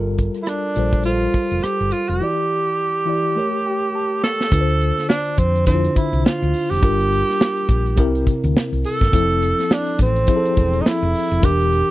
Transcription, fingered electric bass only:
0.00 0.28 G1 medium
0.77 1.25 A#1 medium
1.51 1.61 F1 medium
1.64 muted fingered electric bass stroke soft
1.80 1.90 G1 medium
2.09 2.19 F1 medium
4.52 4.90 D2 loud
5.38 5.87 F2 loud
5.97 muted fingered electric bass stroke soft
6.13 6.23 C2 medium
6.42 6.52 D2 medium
6.71 6.81 F1 medium
6.83 7.21 G1 loud
7.69 7.98 A#1 medium
7.98 8.22 C2 medium
8.27 muted fingered electric bass stroke soft
8.44 8.54 D2 medium
8.55 muted fingered electric bass stroke soft
8.72 8.82 C2 medium
9.01 9.11 G1 medium
9.14 9.52 F1 loud
10.00 10.24 A1 loud
10.57 10.81 E1 medium
11.02 11.12 F1 loud
11.31 11.41 F1 medium
11.43 11.81 E1 medium

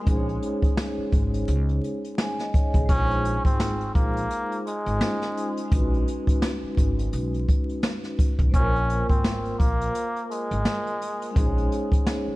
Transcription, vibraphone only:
0.01 2.82 G#3 medium
0.01 2.83 C#4 medium
0.06 2.85 D#4 medium
0.06 2.15 G#4 medium
0.10 0.16 C5 medium
0.17 2.20 C#5 medium
2.19 2.38 G#5 medium
2.40 2.53 D#5 medium
2.54 2.73 C#5 medium
2.74 3.08 G#4 medium
2.86 4.95 G#3 medium
2.90 4.97 D#4 medium
2.90 4.99 F4 medium
2.95 5.00 C5 medium
4.98 5.64 G#3 soft
4.98 5.67 C#4 medium
4.98 5.69 D#4 medium
4.98 5.72 F4 medium
5.03 5.72 C5 medium
5.66 8.47 G#3 medium
5.66 8.48 C#4 medium
5.70 8.49 D#4 medium
5.70 8.50 F#4 medium
5.75 8.51 B4 medium
8.49 11.30 A#3 medium
8.49 11.31 C5 medium
8.56 11.33 F4 medium
8.56 11.34 A#4 medium
11.31 12.36 G#3 medium
11.31 12.36 C#4 medium
11.35 12.36 D#4 medium
11.35 12.36 G#4 medium
11.40 11.45 C5 medium
11.46 12.36 C#5 medium

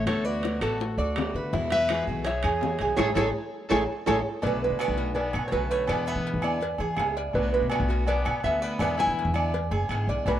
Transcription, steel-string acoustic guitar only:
0.06 0.42 D3 medium
0.06 0.43 A3 medium
0.06 0.43 B3 medium
0.06 0.44 F#4 medium
0.44 0.61 D3 medium
0.44 0.62 A3 medium
0.44 0.61 B3 medium
0.44 0.60 F#4 soft
0.61 0.79 A3 medium
0.61 0.80 B3 medium
0.61 0.79 F#4 medium
0.80 muted steel-string acoustic guitar stroke medium
1.16 1.52 D3 medium
1.16 1.52 A3 medium
1.16 1.53 B3 medium
1.16 1.53 F#4 medium
1.52 1.88 B2 medium
1.52 1.87 E3 medium
1.52 1.89 G#3 medium
1.52 1.89 B3 medium
1.52 1.89 F#4 medium
1.89 2.06 E3 medium
1.89 2.07 G#3 medium
1.89 2.07 B3 medium
1.89 2.06 F#4 medium
2.07 2.25 E3 medium
2.07 2.25 G#3 medium
2.07 2.25 B3 medium
2.07 2.25 F#4 medium
2.25 muted steel-string acoustic guitar stroke medium
2.62 2.97 E3 soft
2.62 2.97 G#3 soft
2.62 2.98 B3 medium
2.62 2.98 F#4 medium
2.98 3.10 G#3 medium
2.98 3.10 A3 medium
2.98 3.10 C#4 medium
3.15 3.27 G#3 loud
3.15 3.28 A3 medium
3.15 3.28 C#4 loud
3.71 3.83 G#3 loud
3.71 3.83 A3 medium
3.71 3.83 C#4 medium
4.07 4.19 G#3 loud
4.07 4.19 A3 medium
4.07 4.19 C#4 medium
4.42 4.97 B2 medium
4.42 4.97 D3 medium
4.42 4.97 A3 medium
4.42 4.97 B3 medium
4.42 4.96 F#4 medium
4.97 5.14 D3 medium
4.97 5.14 A3 medium
4.97 5.14 B3 medium
4.97 5.15 F#4 medium
5.14 muted steel-string acoustic guitar stroke medium
5.51 5.87 D3 medium
5.51 5.88 A3 medium
5.51 5.88 B3 medium
5.51 5.89 F#4 medium
5.87 6.42 B2 medium
5.87 6.42 D3 medium
5.87 6.42 G#3 medium
5.87 6.43 B3 medium
5.87 6.41 E4 medium
6.42 6.60 D3 medium
6.42 6.60 G#3 medium
6.42 6.61 B3 medium
6.42 6.60 E4 medium
6.60 muted steel-string acoustic guitar stroke medium
6.99 7.34 G#3 medium
6.99 7.34 B3 medium
6.99 7.35 E4 medium
7.34 7.88 B2 medium
7.34 7.89 D3 medium
7.34 7.89 A3 medium
7.34 7.89 B3 medium
7.34 7.87 F#4 medium
7.88 8.06 D3 medium
7.88 8.07 A3 medium
7.88 8.07 B3 medium
7.88 8.06 F#4 medium
8.07 muted steel-string acoustic guitar stroke medium
8.44 8.78 D3 medium
8.44 8.79 A3 medium
8.44 8.80 B3 medium
8.44 8.81 F#4 medium
8.79 9.34 B2 medium
8.79 9.34 D3 medium
8.79 9.34 G#3 medium
8.79 9.34 B3 medium
8.79 9.32 E4 medium
9.34 9.52 D3 medium
9.34 9.53 G#3 medium
9.34 9.53 B3 medium
9.34 9.52 E4 medium
9.53 muted steel-string acoustic guitar stroke medium
9.88 10.25 D3 medium
9.88 10.26 G#3 medium
9.88 10.26 B3 medium
9.88 10.26 E4 medium
10.26 10.40 B2 medium
10.26 10.40 D3 medium
10.26 10.40 A3 medium
10.26 10.40 B3 medium
10.26 10.40 F#4 medium

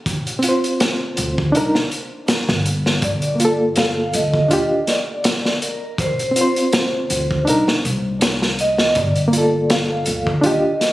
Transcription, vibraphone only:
3.04 3.73 D5 loud
3.76 4.15 F5 loud
4.15 4.91 D#5 loud
4.88 5.58 D5 loud
5.62 5.97 A#4 medium
6.00 6.34 C5 medium
6.36 7.43 C5 medium
8.61 8.98 D#5 loud
8.97 9.73 D5 loud
9.71 10.40 F5 loud
10.45 10.93 D#5 medium

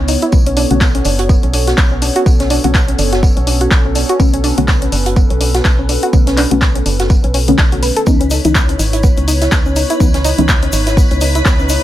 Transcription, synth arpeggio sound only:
0.08 0.22 D#4 medium
0.22 0.26 E4 loud
0.33 0.42 B3 loud
0.47 0.53 C#4 loud
0.57 0.70 D4 loud
0.71 0.75 F#4 medium
0.81 0.90 B3 loud
0.95 0.99 C#4 medium
1.05 1.18 D4 medium
1.19 1.26 F#4 medium
1.29 1.39 B3 loud
1.43 1.53 C#4 medium
1.54 1.63 D4 medium
1.67 1.72 F#4 medium
1.78 1.87 B3 medium
1.92 1.96 C#4 medium
2.02 2.15 D4 medium
2.16 2.20 F#4 loud
2.26 2.35 B3 loud
2.40 2.47 C#4 loud
2.50 2.64 D4 loud
2.64 2.68 F#4 medium
2.75 2.84 B3 loud
2.88 2.92 C#4 medium
2.99 3.12 D4 medium
3.13 3.19 F#4 medium
3.23 3.32 B3 loud
3.37 3.47 C#4 medium
3.47 3.56 D4 medium
3.61 3.65 F#4 medium
3.71 3.80 B3 medium
3.85 3.89 C#4 medium
3.95 4.09 D4 medium
4.09 4.13 F#4 loud
4.20 4.29 B3 loud
4.33 4.40 C#4 medium
4.44 4.57 D4 loud
4.58 4.62 F#4 medium
4.68 4.77 B3 loud
4.82 4.86 C#4 medium
4.92 5.05 D4 medium
5.06 5.13 F#4 medium
5.16 5.26 B3 loud
5.30 5.40 C#4 medium
5.41 5.50 D4 medium
5.55 5.59 F#4 medium
5.65 5.74 B3 medium
5.79 5.83 C#4 medium
5.89 6.02 D4 medium
6.03 6.07 F#4 loud
6.13 6.22 B3 loud
6.27 6.34 C#4 loud
6.37 6.51 D4 loud
6.51 6.55 F#4 medium
6.62 6.71 B3 loud
6.76 6.80 C#4 medium
6.86 6.99 D4 medium
7.00 7.06 F#4 medium
7.10 7.19 B3 loud
7.24 7.33 C#4 medium
7.34 7.40 C#4 loud
7.48 7.55 B3 medium
7.58 7.68 D4 loud
7.72 7.79 F#4 medium
7.83 7.96 B4 medium
7.96 8.06 A4 loud
8.07 8.16 B3 loud
8.21 8.27 C#4 loud
8.31 8.44 D#4 loud
8.45 8.49 E4 medium
8.55 8.64 B3 loud
8.69 8.73 C#4 medium
8.79 8.93 D#4 medium
8.93 9.00 E4 medium
9.04 9.13 B3 medium
9.17 9.27 C#4 medium
9.28 9.37 D#4 medium
9.42 9.46 E4 medium
9.52 9.61 B3 medium
9.66 9.70 C#4 medium
9.76 9.89 D#4 medium
9.90 9.94 E4 loud
10.00 10.10 B3 loud
10.14 10.21 C#4 medium
10.25 10.38 D#4 loud
10.38 10.43 E4 medium
10.49 10.58 B3 loud
10.63 10.67 C#4 medium
10.73 10.86 D#4 medium
10.87 10.94 E4 medium
10.97 11.06 B3 loud
11.11 11.21 C#4 medium
11.21 11.30 D#4 medium
11.35 11.39 E4 medium
11.46 11.55 B3 medium
11.59 11.63 C#4 medium
11.70 11.83 D#4 medium

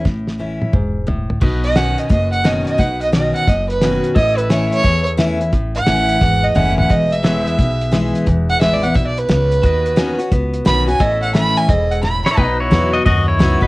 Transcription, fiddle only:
1.64 1.78 D#5 loud
1.76 2.01 F#5 medium
1.99 2.10 D#5 medium
2.10 2.32 D#5 medium
2.32 2.47 F#5 medium
2.45 2.66 D#5 medium
2.67 2.81 D#5 medium
2.79 3.01 F#5 medium
3.02 3.13 D#5 medium
3.14 3.35 D#5 medium
3.35 3.50 F#5 medium
3.48 3.69 D#5 medium
3.69 4.03 B4 medium
4.16 4.39 D#5 loud
4.38 4.52 B4 medium
4.50 4.71 C#5 medium
4.72 5.05 C#5 loud
5.76 6.45 F#5 loud
6.44 6.57 D#5 medium
6.56 6.77 F#5 loud
6.79 6.92 F#5 medium
6.90 7.14 D#5 medium
7.13 8.12 E5 medium
8.50 8.61 F#5 loud
8.61 8.75 E5 medium
8.73 8.85 D5 medium
8.83 8.97 F#5 medium
8.95 9.06 E5 medium
9.07 9.20 D5 medium
9.19 10.18 B4 loud
10.66 10.88 B5 loud
10.89 11.02 G#5 loud
11.01 11.22 D#5 loud
11.23 11.34 F#5 medium
11.35 11.59 B5 loud
11.57 11.71 G#5 loud
11.69 11.93 D#5 medium
11.91 12.03 F#5 medium
12.04 12.24 B5 medium
12.25 12.37 B5 loud

